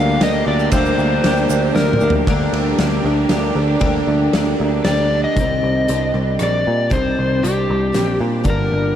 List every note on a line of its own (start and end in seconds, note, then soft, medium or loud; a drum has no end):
0.00 0.17 D2 medium
0.00 0.71 D3 medium
0.00 0.72 D3 medium
0.00 0.20 G3 medium
0.00 0.22 A#3 medium
0.00 0.22 D4 medium
0.00 2.25 D4 medium
0.00 0.22 G4 medium
0.00 2.25 G4 medium
0.00 2.25 A#4 medium
0.00 0.20 F5 medium
0.21 0.42 D2 medium
0.21 0.47 G3 medium
0.21 0.47 A#3 medium
0.21 0.46 D4 medium
0.21 0.45 G4 medium
0.21 0.48 D#5 medium
0.21 snare medium
0.21 ride medium
0.46 0.68 D2 medium
0.46 0.73 A#3 soft
0.46 0.72 D4 soft
0.46 0.72 G4 soft
0.46 0.72 D5 medium
0.59 shaker soft
0.72 0.93 D2 loud
0.72 1.24 D3 medium
0.72 1.23 G3 medium
0.72 1.23 A#3 medium
0.72 1.23 D4 medium
0.72 1.24 G4 medium
0.72 1.72 C5 medium
0.72 kick loud
0.72 ride medium
0.72 shaker loud
0.86 shaker soft
0.98 1.19 D2 medium
0.98 1.24 A#3 medium
0.98 1.25 D4 medium
0.98 1.25 G4 medium
0.98 shaker soft
1.24 1.45 D2 medium
1.24 2.26 D3 medium
1.24 1.50 G3 medium
1.24 1.50 A#3 medium
1.24 1.50 D4 medium
1.24 1.50 G4 medium
1.24 snare medium
1.24 ride medium
1.37 shaker soft
1.50 1.71 D2 medium
1.50 1.74 A#3 soft
1.50 1.74 D4 soft
1.50 1.75 G4 medium
1.50 shaker medium
1.75 1.96 D2 medium
1.75 2.01 G3 medium
1.75 2.02 A#3 medium
1.75 2.02 D4 medium
1.75 2.00 G4 medium
1.75 2.12 A#4 medium
1.75 snare medium
1.75 shaker soft
1.93 mid tom medium
2.00 2.22 D2 medium
2.00 2.28 A#3 soft
2.00 2.28 D4 soft
2.00 2.28 G4 soft
2.00 shaker soft
2.10 floor tom loud
2.27 2.47 D2 medium
2.27 3.79 D3 medium
2.27 2.80 G3 medium
2.27 2.80 A#3 loud
2.27 5.34 D4 medium
2.27 2.82 D4 medium
2.27 2.82 G4 medium
2.27 5.35 G4 medium
2.27 5.34 A#4 medium
2.27 kick loud
2.27 ride medium
2.53 2.73 D2 medium
2.53 ride medium
2.79 2.99 D2 medium
2.79 3.83 D3 medium
2.79 3.05 G3 medium
2.79 3.06 A#3 medium
2.79 3.05 D4 medium
2.79 3.04 G4 medium
2.79 snare medium
2.79 ride medium
3.04 3.24 D2 medium
3.04 3.29 A#3 soft
3.04 3.31 D4 soft
3.04 3.31 G4 medium
3.29 3.50 D2 medium
3.29 3.56 G3 medium
3.29 3.56 A#3 medium
3.29 3.55 D4 medium
3.29 3.55 G4 medium
3.29 snare medium
3.29 ride medium
3.55 3.76 D2 medium
3.55 3.79 A#3 soft
3.55 3.80 D4 soft
3.55 3.80 G4 medium
3.79 4.01 D2 loud
3.79 4.32 D3 medium
3.79 4.33 G3 medium
3.79 4.33 A#3 medium
3.79 4.33 D4 medium
3.79 4.33 G4 medium
3.79 kick loud
3.79 ride medium
3.84 4.34 D3 medium
4.07 4.27 D2 medium
4.33 4.54 D2 medium
4.33 5.38 D3 medium
4.33 4.83 G3 medium
4.33 4.85 A#3 medium
4.33 4.84 D4 medium
4.33 4.86 G4 medium
4.33 snare medium
4.33 ride medium
4.60 4.80 D2 medium
4.60 5.13 D4 medium
4.84 5.25 D2 medium
4.84 5.37 G3 medium
4.84 5.37 A#3 medium
4.84 5.37 D4 medium
4.84 5.38 G4 medium
4.84 5.21 D5 medium
4.84 snare medium
4.84 ride medium
5.14 5.38 D4 medium
5.24 6.10 D#5 loud
5.36 5.60 C2 medium
5.36 5.89 C3 medium
5.36 5.89 D#3 medium
5.36 5.87 G3 medium
5.36 5.87 C4 medium
5.36 5.90 G4 medium
5.36 kick loud
5.36 closed hi-hat medium
5.63 5.86 C2 medium
5.88 6.12 C2 medium
5.88 6.14 G3 medium
5.88 6.13 C4 medium
5.88 6.13 D4 medium
5.88 6.13 G4 medium
5.88 closed hi-hat medium
6.14 6.37 C2 medium
6.14 6.38 G3 soft
6.14 6.39 C4 soft
6.14 6.40 D4 soft
6.14 6.40 G4 soft
6.39 6.64 A#1 medium
6.39 6.89 G3 soft
6.39 6.90 C4 soft
6.39 6.90 D4 medium
6.39 6.90 G4 medium
6.39 cross-stick medium
6.39 closed hi-hat medium
6.43 6.95 D5 medium
6.67 6.90 A#2 medium
6.90 7.15 C2 medium
6.90 7.43 C3 medium
6.90 7.43 D#3 medium
6.90 7.42 G3 medium
6.90 7.42 C4 medium
6.90 7.43 D4 medium
6.90 7.43 G4 medium
6.90 7.46 C5 medium
6.90 kick loud
6.90 closed hi-hat medium
7.19 7.41 C2 medium
7.42 7.67 C2 medium
7.42 7.92 G3 medium
7.42 7.92 C4 medium
7.42 7.93 D4 medium
7.42 7.94 G4 medium
7.42 8.17 G4 medium
7.42 closed hi-hat soft
7.70 7.93 C2 medium
7.92 8.18 A#1 medium
7.92 8.19 G3 soft
7.92 8.19 C4 medium
7.92 8.19 D4 medium
7.92 8.18 G4 medium
7.92 snare medium
7.92 closed hi-hat medium
8.20 8.44 A#2 medium
8.20 8.43 G3 soft
8.20 8.44 C4 soft
8.20 8.43 D4 soft
8.20 8.46 G4 soft
8.44 8.69 G1 medium
8.44 8.96 G2 medium
8.44 8.96 D3 medium
8.44 8.94 G3 medium
8.44 8.95 A#3 medium
8.44 8.95 D4 medium
8.44 kick loud
8.44 closed hi-hat medium
8.50 8.96 A#4 medium
8.72 8.96 G1 medium